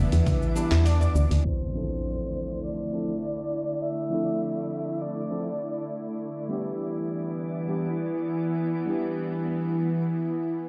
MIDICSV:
0, 0, Header, 1, 10, 480
1, 0, Start_track
1, 0, Tempo, 594059
1, 1173, Time_signature, 4, 2, 24, 8
1, 8636, End_track
2, 0, Start_track
2, 0, Title_t, "Soft synth lead"
2, 0, Program_c, 0, 80
2, 0, Note_on_c, 0, 76, 115
2, 693, Note_off_c, 0, 76, 0
2, 1171, Note_on_c, 0, 72, 86
2, 2100, Note_off_c, 0, 72, 0
2, 2127, Note_on_c, 0, 74, 99
2, 3085, Note_on_c, 0, 76, 116
2, 3097, Note_off_c, 0, 74, 0
2, 4049, Note_off_c, 0, 76, 0
2, 4052, Note_on_c, 0, 74, 89
2, 4740, Note_off_c, 0, 74, 0
2, 8636, End_track
3, 0, Start_track
3, 0, Title_t, "Synth texture"
3, 0, Program_c, 1, 99
3, 0, Note_on_c, 1, 74, 93
3, 1166, Note_off_c, 1, 74, 0
3, 1175, Note_on_c, 1, 74, 80
3, 7894, Note_off_c, 1, 74, 0
3, 8636, End_track
4, 0, Start_track
4, 0, Title_t, "Oud"
4, 0, Program_c, 2, 24
4, 0, Note_on_c, 2, 59, 84
4, 441, Note_off_c, 2, 59, 0
4, 448, Note_on_c, 2, 62, 68
4, 570, Note_off_c, 2, 62, 0
4, 577, Note_on_c, 2, 64, 73
4, 686, Note_off_c, 2, 64, 0
4, 689, Note_on_c, 2, 62, 84
4, 810, Note_off_c, 2, 62, 0
4, 815, Note_on_c, 2, 74, 78
4, 926, Note_off_c, 2, 74, 0
4, 8636, End_track
5, 0, Start_track
5, 0, Title_t, "Tine electric piano"
5, 0, Program_c, 3, 4
5, 0, Note_on_c, 3, 55, 80
5, 0, Note_on_c, 3, 59, 78
5, 0, Note_on_c, 3, 62, 79
5, 0, Note_on_c, 3, 64, 72
5, 0, Note_on_c, 3, 71, 88
5, 418, Note_off_c, 3, 55, 0
5, 422, Note_off_c, 3, 59, 0
5, 425, Note_off_c, 3, 62, 0
5, 430, Note_off_c, 3, 64, 0
5, 435, Note_off_c, 3, 71, 0
5, 450, Note_on_c, 3, 55, 82
5, 453, Note_on_c, 3, 59, 76
5, 457, Note_on_c, 3, 62, 72
5, 461, Note_on_c, 3, 64, 74
5, 465, Note_on_c, 3, 71, 86
5, 597, Note_off_c, 3, 55, 0
5, 599, Note_off_c, 3, 59, 0
5, 601, Note_off_c, 3, 62, 0
5, 603, Note_off_c, 3, 64, 0
5, 604, Note_off_c, 3, 71, 0
5, 1400, Note_on_c, 3, 53, 71
5, 1407, Note_on_c, 3, 60, 65
5, 1416, Note_on_c, 3, 62, 65
5, 1424, Note_on_c, 3, 64, 64
5, 1431, Note_on_c, 3, 69, 79
5, 2339, Note_off_c, 3, 53, 0
5, 2342, Note_off_c, 3, 60, 0
5, 2347, Note_off_c, 3, 62, 0
5, 2351, Note_off_c, 3, 64, 0
5, 2355, Note_off_c, 3, 69, 0
5, 2364, Note_on_c, 3, 53, 64
5, 2368, Note_on_c, 3, 60, 57
5, 2372, Note_on_c, 3, 62, 63
5, 2377, Note_on_c, 3, 64, 62
5, 2382, Note_on_c, 3, 69, 71
5, 2514, Note_off_c, 3, 53, 0
5, 2516, Note_off_c, 3, 60, 0
5, 2518, Note_off_c, 3, 62, 0
5, 2520, Note_off_c, 3, 64, 0
5, 2523, Note_off_c, 3, 69, 0
5, 3314, Note_on_c, 3, 53, 68
5, 3321, Note_on_c, 3, 60, 65
5, 3331, Note_on_c, 3, 62, 66
5, 3340, Note_on_c, 3, 64, 63
5, 3347, Note_on_c, 3, 69, 81
5, 4256, Note_off_c, 3, 53, 0
5, 4260, Note_off_c, 3, 60, 0
5, 4265, Note_off_c, 3, 62, 0
5, 4269, Note_off_c, 3, 64, 0
5, 4272, Note_off_c, 3, 69, 0
5, 4285, Note_on_c, 3, 53, 68
5, 4288, Note_on_c, 3, 60, 62
5, 4293, Note_on_c, 3, 62, 61
5, 4296, Note_on_c, 3, 64, 61
5, 4300, Note_on_c, 3, 69, 70
5, 4434, Note_off_c, 3, 53, 0
5, 4436, Note_off_c, 3, 60, 0
5, 4439, Note_off_c, 3, 62, 0
5, 4440, Note_off_c, 3, 64, 0
5, 4442, Note_off_c, 3, 69, 0
5, 5241, Note_on_c, 3, 55, 72
5, 5250, Note_on_c, 3, 59, 67
5, 5259, Note_on_c, 3, 62, 64
5, 5265, Note_on_c, 3, 64, 67
5, 5275, Note_on_c, 3, 67, 80
5, 6180, Note_off_c, 3, 55, 0
5, 6184, Note_off_c, 3, 59, 0
5, 6188, Note_off_c, 3, 62, 0
5, 6192, Note_off_c, 3, 64, 0
5, 6197, Note_off_c, 3, 67, 0
5, 6206, Note_on_c, 3, 55, 68
5, 6209, Note_on_c, 3, 59, 59
5, 6215, Note_on_c, 3, 62, 66
5, 6219, Note_on_c, 3, 64, 66
5, 6221, Note_on_c, 3, 67, 74
5, 6355, Note_off_c, 3, 55, 0
5, 6356, Note_off_c, 3, 59, 0
5, 6359, Note_off_c, 3, 62, 0
5, 6361, Note_off_c, 3, 64, 0
5, 6362, Note_off_c, 3, 67, 0
5, 7159, Note_on_c, 3, 55, 75
5, 7169, Note_on_c, 3, 59, 67
5, 7175, Note_on_c, 3, 62, 62
5, 7183, Note_on_c, 3, 64, 65
5, 7192, Note_on_c, 3, 67, 86
5, 7886, Note_off_c, 3, 55, 0
5, 7891, Note_off_c, 3, 59, 0
5, 7894, Note_off_c, 3, 62, 0
5, 7898, Note_off_c, 3, 64, 0
5, 7903, Note_off_c, 3, 67, 0
5, 8636, End_track
6, 0, Start_track
6, 0, Title_t, "Synth drone"
6, 0, Program_c, 4, 95
6, 0, Note_on_c, 4, 52, 88
6, 0, Note_on_c, 4, 59, 80
6, 0, Note_on_c, 4, 62, 98
6, 1142, Note_off_c, 4, 52, 0
6, 1142, Note_off_c, 4, 59, 0
6, 1156, Note_off_c, 4, 62, 0
6, 1174, Note_on_c, 4, 50, 76
6, 1174, Note_on_c, 4, 64, 86
6, 1177, Note_on_c, 4, 57, 74
6, 4981, Note_off_c, 4, 50, 0
6, 4983, Note_off_c, 4, 57, 0
6, 5021, Note_on_c, 4, 52, 81
6, 5022, Note_on_c, 4, 59, 72
6, 8636, Note_off_c, 4, 52, 0
6, 8636, Note_off_c, 4, 59, 0
6, 8636, Note_off_c, 4, 64, 0
6, 8636, End_track
7, 0, Start_track
7, 0, Title_t, "FM bass"
7, 0, Program_c, 5, 39
7, 102, Note_on_c, 5, 40, 95
7, 173, Note_off_c, 5, 40, 0
7, 577, Note_on_c, 5, 40, 87
7, 928, Note_off_c, 5, 40, 0
7, 933, Note_on_c, 5, 38, 90
7, 1012, Note_off_c, 5, 38, 0
7, 1057, Note_on_c, 5, 38, 84
7, 1131, Note_off_c, 5, 38, 0
7, 8636, End_track
8, 0, Start_track
8, 0, Title_t, "Impact"
8, 0, Program_c, 6, 103
8, 1173, Note_on_c, 6, 60, 63
8, 3093, Note_off_c, 6, 60, 0
8, 8636, End_track
9, 0, Start_track
9, 0, Title_t, "Udu"
9, 815, Note_on_c, 9, 64, 71
9, 896, Note_off_c, 9, 64, 0
9, 8636, End_track
10, 0, Start_track
10, 0, Title_t, "Drums"
10, 99, Note_on_c, 9, 46, 56
10, 101, Note_on_c, 9, 69, 33
10, 180, Note_off_c, 9, 46, 0
10, 182, Note_off_c, 9, 69, 0
10, 214, Note_on_c, 9, 36, 96
10, 214, Note_on_c, 9, 46, 50
10, 214, Note_on_c, 9, 64, 63
10, 216, Note_on_c, 9, 69, 44
10, 295, Note_off_c, 9, 36, 0
10, 295, Note_off_c, 9, 46, 0
10, 295, Note_off_c, 9, 64, 0
10, 297, Note_off_c, 9, 69, 0
10, 342, Note_on_c, 9, 69, 30
10, 423, Note_off_c, 9, 69, 0
10, 454, Note_on_c, 9, 69, 68
10, 534, Note_off_c, 9, 69, 0
10, 579, Note_on_c, 9, 39, 79
10, 579, Note_on_c, 9, 46, 59
10, 581, Note_on_c, 9, 69, 32
10, 660, Note_off_c, 9, 39, 0
10, 660, Note_off_c, 9, 46, 0
10, 662, Note_off_c, 9, 69, 0
10, 693, Note_on_c, 9, 46, 49
10, 695, Note_on_c, 9, 69, 45
10, 774, Note_off_c, 9, 46, 0
10, 776, Note_off_c, 9, 69, 0
10, 821, Note_on_c, 9, 69, 30
10, 901, Note_off_c, 9, 69, 0
10, 936, Note_on_c, 9, 69, 78
10, 1017, Note_off_c, 9, 69, 0
10, 1061, Note_on_c, 9, 46, 59
10, 1063, Note_on_c, 9, 69, 32
10, 1142, Note_off_c, 9, 46, 0
10, 1144, Note_off_c, 9, 69, 0
10, 8636, End_track
0, 0, End_of_file